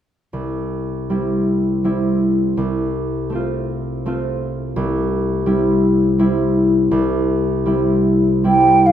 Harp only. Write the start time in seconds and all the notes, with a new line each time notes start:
0.33 C2
1.10 G3 C4 E4
1.84 G3 C4 E4
2.57 C2
3.30 A3 C4
3.35 F4
4.06 A3 C4 F4
4.76 C2
5.46 G3 C4 E4
6.19 G3 C4 E4
6.91 C2
7.66 G3 C4 E4
8.44 G3 C4 E4